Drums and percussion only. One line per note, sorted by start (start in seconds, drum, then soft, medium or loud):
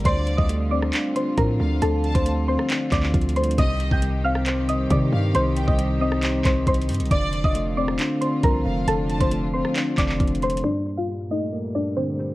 0.05 kick loud
0.05 closed hi-hat medium
0.27 closed hi-hat medium
0.38 kick loud
0.49 closed hi-hat medium
0.82 cross-stick medium
0.93 clap loud
0.93 closed hi-hat medium
1.16 closed hi-hat medium
1.38 kick medium
1.38 closed hi-hat medium
1.82 closed hi-hat medium
2.04 closed hi-hat soft
2.15 kick loud
2.15 closed hi-hat medium
2.26 closed hi-hat medium
2.59 cross-stick medium
2.70 clap loud
2.70 closed hi-hat medium
2.92 kick medium
2.92 clap loud
2.92 closed hi-hat medium
3.03 clap medium
3.14 kick medium
3.14 closed hi-hat soft
3.22 closed hi-hat medium
3.29 closed hi-hat medium
3.36 closed hi-hat medium
3.44 closed hi-hat medium
3.51 closed hi-hat medium
3.58 kick loud
3.58 closed hi-hat medium
3.80 closed hi-hat medium
3.91 kick loud
4.02 closed hi-hat medium
4.35 cross-stick medium
4.46 clap loud
4.46 closed hi-hat medium
4.69 closed hi-hat medium
4.90 kick medium
4.90 closed hi-hat medium
5.35 closed hi-hat medium
5.57 closed hi-hat medium
5.68 kick loud
5.79 closed hi-hat medium
6.12 cross-stick medium
6.23 clap loud
6.23 closed hi-hat medium
6.45 kick loud
6.45 clap medium
6.45 closed hi-hat medium
6.67 kick medium
6.67 closed hi-hat medium
6.74 closed hi-hat medium
6.82 closed hi-hat medium
6.89 closed hi-hat medium
6.89 open hi-hat medium
6.94 closed hi-hat medium
7.00 closed hi-hat medium
7.06 closed hi-hat soft
7.11 kick loud
7.11 closed hi-hat medium
7.33 closed hi-hat medium
7.44 kick loud
7.55 closed hi-hat medium
7.88 cross-stick medium
7.99 clap loud
7.99 closed hi-hat medium
8.22 closed hi-hat medium
8.43 kick medium
8.43 closed hi-hat medium
8.88 closed hi-hat medium
9.10 closed hi-hat soft
9.21 kick loud
9.21 closed hi-hat medium
9.32 closed hi-hat medium
9.65 cross-stick medium
9.76 clap loud
9.76 closed hi-hat medium
9.98 kick medium
9.98 clap medium
9.98 closed hi-hat medium
10.09 clap medium
10.20 kick medium
10.20 closed hi-hat soft
10.27 closed hi-hat medium
10.35 closed hi-hat medium
10.42 closed hi-hat medium
10.50 closed hi-hat medium
10.57 closed hi-hat medium